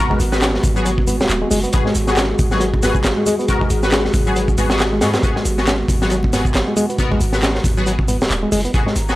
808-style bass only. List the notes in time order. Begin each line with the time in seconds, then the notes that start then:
0.20 G#1
0.64 G#1
1.20 D#1
1.29 D#1
1.51 F#1
1.74 G#1
1.95 G#1
2.39 G#1
2.95 G#1
3.04 G#1
3.70 G#1
4.14 G#1
4.58 G#1
5.01 G#2
5.23 G#1
5.45 G#1
5.88 G#1
6.45 G#1
6.55 G#1
7.21 G#1
7.64 G#1
8.30 D#1
8.52 F#1
8.74 G#1
8.96 G#1